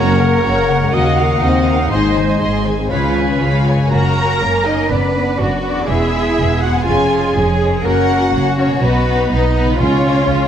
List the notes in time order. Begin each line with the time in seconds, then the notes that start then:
Already playing: F#1 F#2 A#3 F#4 A#4 C#5 F#5 A#5
0.19 C#3 A#4 F#5
0.43 F#1 F#2 A#3 F#4 C#5 A#5
0.68 C#3 A#4 F#5
0.80 G#3
0.92 D#2 D#3 A#3 F#4 D#5 F5
1.18 A#3 A#4 F5 F#5
1.41 D#2 C4 D#4 F#4 D#5 F5
1.67 A#3 A#4 F5 F#5
1.80 C#4
1.91 G#1 G#2 D#4 G#4 C5 D#5 C6
2.16 D#3 C5 G#5
2.40 G#1 G#2 G#3 G#4 D#5 C6
2.65 D#3 C5 G#5
2.79 C4
2.91 C#2 C#3 C#4 F4 B4 C#5 F5 B5
3.16 G#3 B4 C#5 G#5
3.41 C#2 C#3 G#4 C#5 F5 G#5 B5
3.66 G#3 B4 C#5 F5 G#5
3.73 F#2
3.77 C#4
3.82 F#4
3.86 A#4
3.92 F#1 A#3 C#4 F#4 A#4 A#5
4.17 A#3 C#4
4.41 F#1 A#3 C#4 A#4
4.65 A#3 C#4 D#4 D#5
4.73 F#2
4.77 B3
4.81 F#4
4.86 B4 D5
4.90 F#1 B3 D4 B4
5.15 B3
5.40 F#1 B3 F#4
5.64 B3 D4 D5
5.70 E2
5.75 E4
5.80 G#4
5.84 B4 E5
5.88 E1 G#3 B3 E4 G#4
6.14 G#3 B3
6.38 E1 G#3 B3
6.61 G#3 B3 F#4 F#5
6.69 F2
6.73 C#4
6.78 G#4
6.82 C#5 G#5
6.86 F1 G#3 C#4 F4 G#4
7.12 G#3 C#4
7.36 F1 G#3 C#4 G#4
7.60 G#3 C#4
7.67 F#2
7.71 C#4
7.76 A#4
7.80 A#3 C#4 A#4 C#5 F#5
7.85 F#1 F#4
8.09 A#3 C#4
8.32 F#1 A#3 C#4 F#4
8.58 A#3 C#4 C#5
8.65 B2
8.70 B3
8.74 F#4
8.79 B3 D#4 B4 D#5
8.83 B1
9.07 B3 D#4
9.31 B1 B3 D#4
9.55 B3 D#4 B4
9.63 C#3
9.68 G#3
9.72 F4
9.76 C#3 F4 C#5
9.81 C#2 G#3 C#4 F4
10.05 G#3 F4
10.29 C#2 G#3 F4